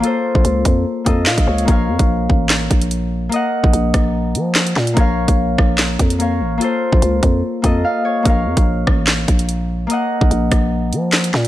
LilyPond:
<<
  \new Staff \with { instrumentName = "Harp" } { \time 4/4 \key bes \minor \tempo 4 = 146 << { r2. f''8 des''8 | r1 | r1 | r1 |
r2. f''8 des''8 | r1 | r1 | } \\ { <bes f' a' c''>2~ <bes f' a' c''>8 <bes f' a' ees''>4. | <bes bes' des'' f''>1 | <bes bes' ees'' ges''>1 | <bes bes' des'' f''>2. <bes bes' des'' f''>4 |
<bes f' a' c''>2~ <bes f' a' c''>8 <bes f' a' ees''>4. | <bes bes' des'' f''>1 | <bes bes' ees'' ges''>1 | } >> }
  \new Staff \with { instrumentName = "808-style bass" } { \clef bass \time 4/4 \key bes \minor r8. bes,,16 des,8 f,8 r8 f,8 bes,16 bes,,16 des,8 | bes,,8 f,16 bes,,8. a,,4 bes,,4. | r8. bes,,16 bes,,8 bes,,4 f4 bes,8 | bes,,8. bes,,8. bes,,4 f,4 a,,8 |
r8. bes,,16 des,8 f,8 r8 f,8 r4 | bes,,8 f,16 bes,,8. a,,4 bes,,4. | r8. bes,,16 bes,,8 bes,,4 f4 bes,8 | }
  \new DrumStaff \with { instrumentName = "Drums" } \drummode { \time 4/4 hh8. bd16 hh8 <hh bd>8 r8 <hh bd>8 <hc sn>16 <hh bd>8 hh16 | <hh bd>8. <hh bd>16 r8 bd8 <hc hh sn>8 <hh bd>16 hh16 hh4 | hh8. bd16 hh8 <hh bd ss>8 r8 hh8 <hc sn>16 hh16 sn16 hh16 | <hh bd>8. <hh bd>16 r8 <bd ss>8 <hc hh sn>8 <hh bd>16 hh16 hh4 |
hh8. bd16 hh8 <hh bd>8 r8 <hh bd>8 r4 | <hh bd>8. <hh bd>16 r8 <bd ss>8 <hc hh sn>8 <hh bd>16 hh16 hh4 | hh8. bd16 hh8 <hh bd ss>8 r8 hh8 <hc sn>16 hh16 sn16 hh16 | }
>>